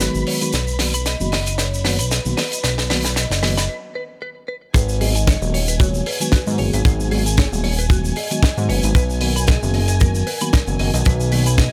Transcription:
Already playing: B4 B5
0.00 D#3 F#3 G#3 B3 F#4, snare, closed hi-hat, shaker
0.15 G#1, shaker
0.26 B4 C#5, open hi-hat
0.41 D#3 F#3 G#3 B3 F#4 B4, closed hi-hat, shaker
0.53 B1 B4, snare, closed hi-hat, shaker
0.67 shaker
0.79 D#3 F#3 A#3 B3 F#4 B4, snare, open hi-hat
0.94 B5, closed hi-hat, shaker
1.05 D#5, snare, closed hi-hat, shaker
1.20 F#1 D#3 F#3 A#3 B3 F#4, shaker
1.32 D#5, snare, open hi-hat
1.47 D#5, closed hi-hat, shaker
1.58 B4 C#5, snare, closed hi-hat, shaker
1.74 shaker
1.84 D#3 F#3 A#3 B3 F#4 B4, snare, open hi-hat
1.99 B1 B4 B5, closed hi-hat, shaker
2.11 D#5, snare, closed hi-hat, shaker
2.26 B1 D#3 F#3 A#3 B3 F#4, shaker
2.37 B4 D#5, snare, open hi-hat
2.52 D#5, closed hi-hat, shaker
2.63 B1 B4, snare, closed hi-hat, shaker
2.78 snare, shaker
2.90 D#3 F#3 A#3 B3 F#4 B4, snare, open hi-hat
3.04 B5, snare, closed hi-hat, shaker
3.16 B4 D#5, snare, closed hi-hat, shaker
3.30 F#1, snare, shaker
3.43 D#3 F#3 A#3 B3 F#4 B4, snare, open hi-hat
3.57 B5, snare, closed hi-hat, shaker
3.69 B4
3.95 B4
4.22 B4
4.48 B4
4.74 G#1 G#4 B4 G#5, kick, closed hi-hat, shaker
4.89 shaker
5.01 D#3 F#3 G#3 B3 F#4 G#4 D#5, open hi-hat
5.15 G#5, closed hi-hat, shaker
5.27 C#5, kick, snare, closed hi-hat, shaker
5.41 D#1 D#3 F#3 G#3 B3 F#4, shaker
5.54 C#5, open hi-hat
5.68 B4, closed hi-hat, shaker
5.79 D#3 F#3 G#3 B3 F#4 C#5, kick, closed hi-hat, shaker
5.94 shaker
6.06 G#4 B4, open hi-hat
6.20 D#3 F#3 G#3 B3 F#4 G#5, closed hi-hat, shaker
6.32 F#4, kick, snare, closed hi-hat, shaker
6.46 G#2 D#3 F#3 G#3 B3 F#4, shaker
6.58 F#1 G#4 C#5, open hi-hat
6.73 G#1 B4, closed hi-hat, shaker
6.85 G#1 G#4, kick, closed hi-hat, shaker
7.00 shaker
7.11 D#3 F#3 G#3 B3 F#4 G#4, open hi-hat
7.26 G#5, closed hi-hat, shaker
7.37 C#5, kick, snare, closed hi-hat, shaker
7.52 D#1 D#3 F#3 G#3 B3 F#4, shaker
7.64 C#5, open hi-hat
7.79 B4, closed hi-hat, shaker
7.90 D#3 F#3 G#3 B3 F#4, kick, closed hi-hat, shaker
8.05 shaker
8.16 G#4 D#5, open hi-hat
8.31 D#3 F#3 G#3 B3 F#4 G#5, closed hi-hat, shaker
8.43 F#4, kick, snare, closed hi-hat, shaker
8.58 G#2 D#3 F#3 G#3 B3 F#4, shaker
8.69 F#1 B4 C#5, open hi-hat
8.83 G#1 B4, closed hi-hat, shaker
8.95 B1 B4, kick, closed hi-hat, shaker
9.10 shaker
9.21 D#3 F#3 A#3 B3 F#4 A#4 B4, open hi-hat
9.36 B5, closed hi-hat, shaker
9.47 G#4 D#5, kick, snare, closed hi-hat, shaker
9.63 F#1 D#3 F#3 A#3 B3 F#4, shaker
9.74 D#5, open hi-hat
9.88 D#5, closed hi-hat, shaker
10.00 D#3 F#3 A#3 B3 F#4 A#4, kick, closed hi-hat, shaker
10.15 shaker
10.27 B4, open hi-hat
10.41 D#3 F#3 A#3 B3 F#4 B5, closed hi-hat, shaker
10.53 A#4, kick, snare, closed hi-hat, shaker
10.68 F#1 D#3 F#3 B3 F#4, shaker
10.79 F#1 D#5, open hi-hat
10.94 B1 D#5, closed hi-hat, shaker
11.05 B1 B4, kick, closed hi-hat, shaker
11.20 shaker
11.32 D#3 F#3 A#3 B3 F#4 B4, open hi-hat
11.46 B5, closed hi-hat, shaker
11.57 D#5, kick, snare, closed hi-hat, shaker

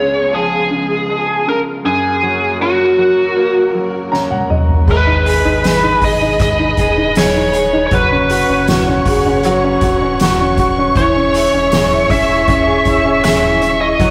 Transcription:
Already playing: C#2 C#3 G#3 B3 F4 G#4 C#5
0.33 F3 G#4
0.70 C#3
1.09 G#3
1.47 C#3 A#4
1.84 F#2 F#3 A#3 F#4 G#4 A#4
2.23 F#3
2.60 C#4 F#4
2.98 F#3
3.36 A#3
3.74 F#3
4.12 C#4 A#5, snare
4.31 F#5, high tom
4.50 F#3 D#5, mid tom
4.69 floor tom
4.87 G#1 G#3 G#4 B4 D#5 B5, kick, crash, tambourine
5.07 D#4
5.25 G#4, hi-hat pedal, open hi-hat, tambourine
5.45 G#1 D#4
5.64 G#4, snare, hi-hat pedal, open hi-hat, tambourine
5.83 D#4
6.01 G#1 G#4 D#5, kick, hi-hat pedal, open hi-hat, tambourine
6.21 D#4
6.39 G#3 D#5, kick, hi-hat pedal, open hi-hat, tambourine
6.59 D#4
6.77 D#1 G#4, kick, hi-hat pedal, open hi-hat, tambourine
6.97 D#4
7.15 G#4 C#5, snare, hi-hat pedal, open hi-hat, tambourine
7.35 D#4
7.53 G#4, hi-hat pedal, open hi-hat, tambourine
7.73 D#4
7.87 C#5
7.91 F#1 F#3 B4 C#5 F#5 C#6, kick, hi-hat pedal, open hi-hat
8.12 C#4
8.29 F#4, hi-hat pedal, open hi-hat, tambourine
8.49 F#1 C#4
8.67 F#4, snare, hi-hat pedal, open hi-hat, tambourine
8.88 C#4
9.05 F#1 F#4 G#4, kick, hi-hat pedal, open hi-hat, tambourine
9.26 C#4
9.43 F#3 F#4, hi-hat pedal, open hi-hat, tambourine
9.64 C#4
9.81 D#1 F#4, kick, hi-hat pedal, open hi-hat, tambourine
10.02 C#4
10.19 F#4, snare, hi-hat pedal, open hi-hat, tambourine
10.41 C#4
10.57 F#4, kick, hi-hat pedal, open hi-hat, tambourine
10.78 C#4
10.96 E1 E3 G#4 C#5 E5, kick, hi-hat pedal, open hi-hat, tambourine
11.16 C#4
11.34 E4, hi-hat pedal, open hi-hat, tambourine
11.53 E1 C#4
11.72 G#4, snare, hi-hat pedal, open hi-hat, tambourine
11.92 E4
12.10 E1 C#4 E5, kick, hi-hat pedal, open hi-hat, tambourine
12.30 E4
12.48 C#4, kick, hi-hat pedal, open hi-hat, tambourine
12.67 G#4
12.85 D#1 E4, kick, hi-hat pedal, open hi-hat, tambourine
13.05 C#4
13.23 G#4 E5, snare, hi-hat pedal, open hi-hat, tambourine
13.42 E4
13.61 C#4, hi-hat pedal, open hi-hat, tambourine
13.81 E4 D#5
13.99 F#1 F#3 A#4 C#5 F#5, kick, hi-hat pedal, open hi-hat, tambourine

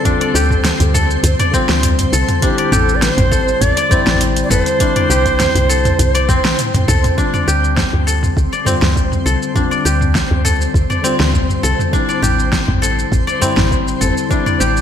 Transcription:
Already playing: D3 G3 C4 F4 G4 A4 C5 D5
0.03 D3 G3 C4 D4 F4, kick, closed hi-hat, mid tom, shaker
0.21 D5, closed hi-hat
0.34 D2 G4, shaker
0.51 kick, mid tom, shaker
0.65 snare, closed hi-hat, shaker
0.80 D2, closed hi-hat, udu, shaker
0.94 A4, mid tom, shaker
1.11 shaker
1.23 D2, closed hi-hat, udu, shaker
1.40 D5, closed hi-hat, mid tom, shaker
1.51 D3 G3 C4, kick, shaker
1.56 F4
1.69 D2, snare, closed hi-hat, shaker
1.83 closed hi-hat, mid tom, shaker
1.99 closed hi-hat, udu, shaker
2.13 C2 A4, shaker
2.29 closed hi-hat, mid tom, shaker
2.41 D3 G3 C4 D4 E4 G4, kick, closed hi-hat, shaker
2.58 D5, closed hi-hat
2.72 A1 G4 A4, mid tom, shaker
2.89 shaker
2.95 D5
3.02 C5, snare, closed hi-hat, shaker
3.17 A1, closed hi-hat, mid tom, udu, shaker
3.31 A4, kick, shaker
3.48 shaker
3.61 A1 D5, closed hi-hat, mid tom, shaker
3.77 D5, closed hi-hat, shaker
3.89 D3 G3 C4 E4, kick, udu, shaker
4.07 A1, snare, closed hi-hat, mid tom, udu, shaker
4.21 closed hi-hat, shaker
4.36 closed hi-hat, shaker
4.44 D5
4.50 G1 A4 B4, mid tom, shaker
4.61 C5
4.66 closed hi-hat, shaker
4.78 D3 G3 C4 D4, kick, closed hi-hat, shaker
4.82 E4
4.96 D5, closed hi-hat, mid tom
5.10 C2 G4, shaker
5.26 kick, closed hi-hat, shaker
5.40 snare, closed hi-hat, mid tom, shaker
5.55 C2, closed hi-hat, udu, shaker
5.69 A4, shaker
5.85 closed hi-hat, mid tom, shaker
5.99 C2, closed hi-hat, udu, shaker
6.15 D5, closed hi-hat, shaker
6.29 C4, kick, mid tom, high tom, shaker
6.44 A#1, snare, closed hi-hat, high tom, shaker
6.59 closed hi-hat, mid tom, shaker
6.74 closed hi-hat, mid tom, udu, shaker
6.88 C2 A4, mid tom, shaker
7.04 closed hi-hat, mid tom, shaker
7.16 D3 G3 C4 D4 C5, kick, shaker
7.20 F4
7.34 D5, mid tom, shaker
7.47 D2 G4, shaker
7.64 shaker
7.77 kick, snare, mid tom, shaker
7.93 D2, udu
8.07 A4, shaker
8.23 mid tom, shaker
8.37 D2, kick, shaker
8.53 D5, shaker
8.65 D3 G3 C4 F4, mid tom, udu, shaker
8.82 D2, snare, udu, shaker
8.96 kick, shaker
9.12 mid tom, shaker
9.26 C2 A4, shaker
9.43 shaker
9.54 D3 G3 C4 D4, kick, mid tom, shaker
9.58 F4
9.71 D5, shaker
9.85 D2 G4, shaker
10.01 mid tom, shaker
10.15 kick, snare, shaker
10.31 D2, udu
10.45 A4, mid tom, shaker
10.61 shaker
10.74 D2, kick, udu, shaker
10.90 D5, mid tom, shaker
11.02 D3 G3 C4, shaker
11.06 F4
11.20 D2, snare, shaker
11.34 kick, mid tom, shaker
11.50 udu, shaker
11.63 C2 A4, shaker
11.79 mid tom, shaker
11.91 D3 G3 C4 D4 E4, kick, shaker
12.09 D5, shaker
12.22 A1 G4, mid tom, shaker
12.40 shaker
12.52 kick, snare, shaker
12.68 A1, mid tom, udu
12.82 A4, shaker
12.99 shaker
13.12 A1, kick, mid tom, shaker
13.27 D5, shaker
13.40 D3 G3 C4, udu, shaker
13.44 E4
13.57 A1, snare, mid tom, udu, shaker
13.71 kick, shaker
13.88 shaker
14.01 G1 A4, mid tom, shaker
14.17 shaker
14.29 D3 G3 C4 D4, kick, shaker
14.33 E4
14.46 D5, mid tom, shaker
14.60 A1 G4, shaker
14.77 shaker

